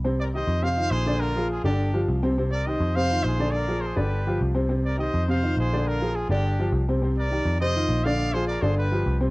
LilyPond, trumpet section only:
\new Staff \with { instrumentName = "Trumpet section" } { \time 4/4 \key c \minor \tempo 4 = 206 r8 <bes' d''>8 <c'' ees''>4 <c'' f''>4 <aes' c''>4 | <f' bes'>4 <f' aes'>8 <d' g'>4. r4 | r8 <bes' d''>8 <c'' ees''>4 <c'' f''>4 <aes' c''>4 | <bes' d''>4 <aes' c''>8 <g' b'>4. r4 |
r8 <bes' d''>8 <c'' ees''>4 <c'' f''>4 <aes' c''>4 | <f' bes'>4 <f' aes'>8 <d' g'>4. r4 | r8 <bes' d''>4. <c'' ees''>4. <d'' f''>8~ | <d'' f''>8 <aes' c''>8 <bes' d''>8 <aes' c''>8 <g' b'>4. r8 | }